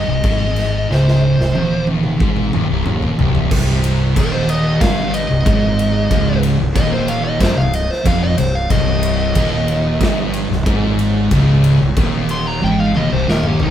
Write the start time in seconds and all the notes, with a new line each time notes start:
Already playing: D#5
0.08 C1 C2
0.23 G#1 G#2, kick, crash
0.56 snare, crash
0.90 C#1 C#2 C5, snare
1.08 snare
1.39 C1 C2, snare
1.55 D#1 D#2, high tom
1.87 high tom
2.03 mid tom
2.20 G#1 G#2, kick
2.36 mid tom
2.53 D#1 D#2, mid tom
2.69 C1 C2
2.85 D#1 D#2, mid tom
3.02 floor tom
3.18 C1 C2, floor tom
3.35 floor tom
3.51 C1 C2, kick, crash
3.84 ride
4.16 D#1 D#2 A#4, kick, ride
4.33 C5
4.49 D#5, ride
4.81 G1 G2 F5, kick, snare, ride
5.14 D#5, ride
5.30 C1 C2
5.45 G#1 G#2, kick, ride
5.79 ride
6.11 C#1 C#2, kick, ride
6.43 ride
6.60 C1 C2
6.76 D#1 D#2 D#5, kick, ride
6.91 C5
7.08 F5, ride
7.25 D#5
7.40 F#1 F#2 C5, kick, snare, ride
7.56 C1 C2 F5
7.74 D#5, ride
7.91 C5, snare
8.05 F1 F2 F5, kick, ride
8.23 D#5
8.38 C1 C2 C5, ride
8.55 F5
8.70 C1 C2 D#5, kick, ride
9.03 ride
9.35 D#1 D#2, kick, ride
9.68 ride
10.01 G1 G2, kick, snare, ride
10.34 ride
10.50 C1 C2, snare
10.66 G#1 G#2, kick, ride
10.99 ride
11.31 C#1 C#2, kick, ride
11.64 ride
11.81 C1 C2
11.97 D#1 D#2, kick, ride
12.29 C6, ride
12.47 A#5
12.62 G#1 G#2 G5, high tom
12.80 F5
12.95 D#1 D#2 D#5, mid tom
13.11 C1 C2 C5
13.28 D#1 D#2 A#4, snare
13.43 G4, mid tom
13.60 C1 C2 D#4, floor tom